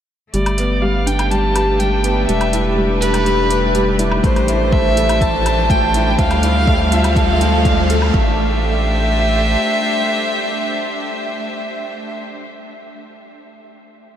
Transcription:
0.33 analog synth bass G1, felt piano G3, string section A3, violin D5, closed hi-hat, riser
0.46 closed hi-hat, low woodblock
0.58 felt piano B3, closed hi-hat
0.82 felt piano G3, violin F5
0.92 string section D4
1.06 felt piano D4, violin G5, closed hi-hat
1.19 string section G4 B4, closed hi-hat, low woodblock
1.31 felt piano G3, violin A5, closed hi-hat
1.55 felt piano G4, closed hi-hat, low woodblock
1.79 felt piano G3, violin G5, closed hi-hat
2.04 felt piano B3, closed hi-hat
2.27 analog synth bass E1, felt piano G3, violin E5, closed hi-hat
2.41 closed hi-hat, low woodblock
2.53 felt piano E4, closed hi-hat
2.77 felt piano G3
3.01 felt piano G4, violin B4, closed hi-hat
3.14 closed hi-hat, low woodblock
3.26 felt piano G3, closed hi-hat
3.50 felt piano B4, closed hi-hat
3.75 felt piano G3, closed hi-hat
3.99 felt piano E4, closed hi-hat
4.12 low woodblock
4.24 analog synth bass A1, felt piano A3, violin C5, kick, closed hi-hat
4.36 closed hi-hat, low woodblock
4.48 felt piano E4, closed hi-hat
4.61 string section C5
4.72 felt piano A3, violin E5, kick
4.97 felt piano A4, closed hi-hat
5.09 closed hi-hat, low woodblock
5.21 felt piano A3, violin A5, kick, closed hi-hat
5.46 felt piano C5, closed hi-hat, low woodblock
5.70 felt piano A3, violin G5, kick, closed hi-hat
5.94 felt piano E4, closed hi-hat
6.19 analog synth bass D2, string section G3, felt piano A3, violin F5, kick, closed hi-hat
6.31 string section C4, closed hi-hat, low woodblock
6.43 felt piano E4, closed hi-hat
6.67 felt piano A3, kick
6.75 string section A4
6.92 felt piano F4, violin E5, closed hi-hat
7.04 string section F3, closed hi-hat, low woodblock
7.16 felt piano A3, violin F5, kick, closed hi-hat
7.41 felt piano F4, closed hi-hat
7.65 felt piano D5, kick, closed hi-hat
7.90 felt piano A4, closed hi-hat
8.02 low woodblock
8.14 analog synth bass A1, felt piano A3, string section A3, violin E5, kick
8.23 string section D4
8.30 string section G4
8.38 string section C5

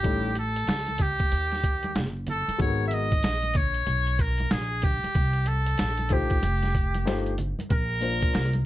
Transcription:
Already playing: muted trumpet G4
0.03 upright bass A1, grand piano G3 C#4 D#4 E4 A4, kick, closed hi-hat, shaker
0.25 shaker
0.35 muted trumpet A4, closed hi-hat, high conga, shaker
0.56 closed hi-hat, shaker
0.67 upright bass C#2, snare, closed hi-hat, shaker
0.87 closed hi-hat, high conga, shaker
0.98 muted trumpet G4, kick, closed hi-hat, low conga, shaker
1.19 kick, closed hi-hat, shaker
1.32 upright bass D#2, closed hi-hat, shaker
1.52 snare, closed hi-hat, shaker
1.64 kick, closed hi-hat, shaker
1.83 closed hi-hat, high conga, shaker
1.96 upright bass F#1, snare, closed hi-hat, shaker
2.17 shaker
2.27 muted trumpet A4, closed hi-hat, low conga, shaker
2.48 muted upright bass stroke, closed hi-hat, high conga, shaker
2.58 upright bass G#1, grand piano G#3 B3 D#4 F#4 A4, muted trumpet C#5, kick, closed hi-hat, shaker
2.67 grand piano A#4
2.80 shaker
2.88 muted trumpet E5, closed hi-hat, high conga, shaker
2.94 muted trumpet D#5
3.12 kick, closed hi-hat, shaker
3.23 upright bass A#1, snare, closed hi-hat, shaker
3.42 closed hi-hat, high conga, shaker
3.54 muted trumpet C#5, kick, closed hi-hat, low conga, shaker
3.74 closed hi-hat, shaker
3.87 upright bass B1, closed hi-hat, shaker
4.07 closed hi-hat, shaker
4.19 muted trumpet A#4, kick, closed hi-hat, shaker
4.38 closed hi-hat, high conga, shaker
4.51 upright bass A#1, muted trumpet G#4, snare, closed hi-hat, shaker
4.73 shaker
4.82 muted trumpet G4, kick, closed hi-hat, low conga, shaker
5.04 muted upright bass stroke, closed hi-hat, high conga, shaker
5.15 upright bass C2, kick, closed hi-hat, shaker
5.33 closed hi-hat, shaker
5.46 muted trumpet A4, closed hi-hat, high conga, shaker
5.66 closed hi-hat, shaker
5.78 upright bass A#1, snare, closed hi-hat, shaker
5.98 closed hi-hat, high conga, shaker
6.09 grand piano A3 D#4 F4 G4 C5, muted trumpet G4, kick, closed hi-hat, low conga, shaker
6.30 kick, closed hi-hat, shaker
6.42 upright bass F1, closed hi-hat, high conga, shaker
6.62 snare, closed hi-hat, shaker
6.74 kick, closed hi-hat, shaker
6.95 closed hi-hat, high conga, shaker
7.05 upright bass G1, grand piano A3 D#4 F4 G4 C5, snare, closed hi-hat, shaker
7.26 closed hi-hat, shaker
7.38 closed hi-hat, low conga, shaker
7.59 muted upright bass stroke, closed hi-hat, high conga, shaker
7.70 upright bass A#1, muted trumpet A#4, kick, closed hi-hat, shaker
7.91 shaker
8.00 grand piano A#3 D4 F4 A#4 C5, closed hi-hat, high conga, shaker
8.22 kick, closed hi-hat, shaker
8.34 upright bass C2, snare, closed hi-hat, shaker
8.53 closed hi-hat, high conga, shaker

